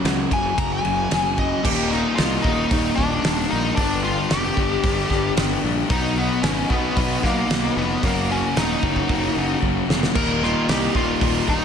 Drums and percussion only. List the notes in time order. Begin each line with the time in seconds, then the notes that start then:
0.05 snare, ride
0.31 kick, ride
0.58 kick, ride
0.85 ride
1.11 snare, ride
1.38 kick, ride
1.65 kick, crash
1.92 snare
2.18 snare, open hi-hat
2.44 kick
2.71 kick, open hi-hat
2.98 kick
3.24 snare, open hi-hat
3.77 kick, open hi-hat
4.30 snare, open hi-hat
4.57 kick
4.84 kick, open hi-hat
5.10 kick, snare
5.37 snare, open hi-hat
5.90 kick, open hi-hat
6.43 snare, open hi-hat
6.70 kick
6.97 kick, open hi-hat
7.23 kick, snare
7.50 snare, open hi-hat
8.03 kick, open hi-hat
8.56 snare, open hi-hat
8.83 kick
8.96 kick
9.09 kick, open hi-hat
9.62 kick
9.90 snare
10.03 snare
10.15 kick, crash
10.43 snare
10.69 snare, open hi-hat
10.95 kick
11.21 kick, open hi-hat
11.48 kick